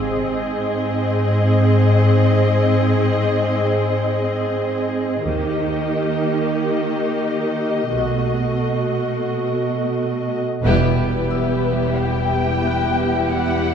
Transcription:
0.00 0.49 G#1 soft
0.00 5.20 G#2 medium
0.00 5.21 C4 soft
0.00 5.21 G#4 soft
0.00 5.25 G#4 soft
0.00 5.21 C5 soft
0.00 5.21 D#5 medium
0.00 5.25 D#5 soft
3.23 7.13 D#6 soft
5.25 5.89 D#2 soft
5.25 7.90 D#3 soft
5.25 7.91 A#3 soft
5.25 7.95 G4 soft
5.25 7.91 G4 soft
5.25 7.95 A#4 soft
5.25 10.40 D#5 soft
5.25 10.61 D#5 soft
7.28 9.30 A#6 soft
7.93 8.58 B1 soft
7.93 10.40 B2 soft
7.93 10.41 A3 soft
7.93 10.65 F#4 soft
7.93 10.41 F#4 soft
7.93 10.64 A4 soft
10.63 13.74 E1 medium
10.63 13.74 E2 soft
10.63 13.74 G3 soft
10.63 13.74 B3 soft
10.63 13.74 E4 soft
10.63 13.74 G4 soft
10.63 13.74 G4 medium
10.63 13.74 B4 soft
10.63 11.95 B4 medium
10.63 13.74 E5 soft
11.30 13.74 E6 soft
11.98 13.34 G5 medium
12.67 13.74 F#6 soft
13.32 13.74 F#5 medium

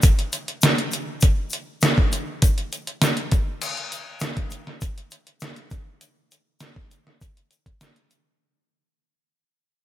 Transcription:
0.02 kick loud
0.02 closed hi-hat loud
0.02 shaker loud
0.19 closed hi-hat soft
0.32 closed hi-hat medium
0.32 shaker medium
0.48 closed hi-hat soft
0.62 snare loud
0.62 closed hi-hat medium
0.62 shaker loud
0.78 closed hi-hat soft
0.91 closed hi-hat medium
0.91 shaker medium
1.21 kick loud
1.21 closed hi-hat medium
1.21 shaker medium
1.50 closed hi-hat medium
1.50 shaker medium
1.81 snare loud
1.81 closed hi-hat medium
1.81 shaker medium
1.98 kick medium
2.12 closed hi-hat medium
2.12 shaker medium
2.42 kick loud
2.42 closed hi-hat loud
2.42 shaker loud
2.58 closed hi-hat soft
2.72 closed hi-hat medium
2.72 shaker medium
2.87 closed hi-hat soft
3.02 snare loud
3.02 closed hi-hat medium
3.02 shaker loud
3.17 closed hi-hat soft
3.32 kick loud
3.32 closed hi-hat medium
3.32 shaker medium
3.62 crash loud
3.62 shaker medium
3.77 closed hi-hat soft
3.92 closed hi-hat medium
3.92 shaker medium
4.20 snare loud
4.20 closed hi-hat loud
4.20 shaker medium
4.37 kick medium
4.37 closed hi-hat soft
4.50 closed hi-hat medium
4.50 shaker medium
4.67 snare soft
4.81 kick loud
4.81 closed hi-hat loud
4.81 shaker medium
4.98 closed hi-hat soft
5.11 closed hi-hat medium
5.11 shaker medium
5.27 closed hi-hat soft
5.40 snare loud
5.40 closed hi-hat loud
5.40 shaker loud
5.56 closed hi-hat soft
5.70 kick loud
5.70 closed hi-hat medium
5.70 shaker medium
6.01 closed hi-hat medium
6.01 shaker medium
6.31 closed hi-hat medium
6.31 shaker medium
6.60 snare loud
6.60 closed hi-hat medium
6.60 shaker medium
6.76 kick medium
6.91 closed hi-hat medium
6.91 shaker medium
7.07 snare soft
7.21 kick loud
7.21 closed hi-hat loud
7.21 shaker loud
7.37 closed hi-hat soft
7.51 closed hi-hat medium
7.51 shaker medium
7.66 kick medium
7.66 closed hi-hat soft
7.81 snare loud
7.81 closed hi-hat medium
7.81 shaker loud
7.96 closed hi-hat soft
8.11 closed hi-hat medium
8.11 shaker medium

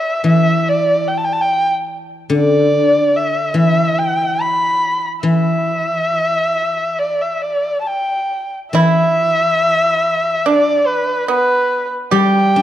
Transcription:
0.00 0.26 E5 medium
0.24 2.72 E3 soft
0.24 0.70 E5 medium
0.68 1.09 D5 medium
1.08 1.19 G5 medium
1.17 1.26 A5 medium
1.24 1.34 G5 medium
1.33 1.42 A5 medium
1.41 1.71 G5 medium
2.30 4.82 D3 medium
2.36 3.18 D5 medium
3.16 3.57 E5 medium
3.54 5.22 E3 soft
3.59 4.00 E5 medium
3.99 4.43 G5 medium
4.41 5.04 B5 medium
5.23 7.86 E3 soft
5.23 7.00 E5 medium
6.99 7.23 D5 medium
7.21 7.43 E5 medium
7.42 7.80 D5 medium
7.81 7.88 A5 soft
7.86 8.53 G5 medium
8.73 11.29 E3 soft
8.73 10.41 E4 medium
8.73 10.47 E5 medium
10.46 11.26 D4 medium
10.46 10.88 D5 medium
10.87 11.29 B4 medium
11.28 11.88 B3 medium
11.28 11.89 B4 medium
12.11 12.62 G3 medium
12.11 12.62 G4 medium
12.11 12.62 G5 medium
12.56 12.62 D4 soft

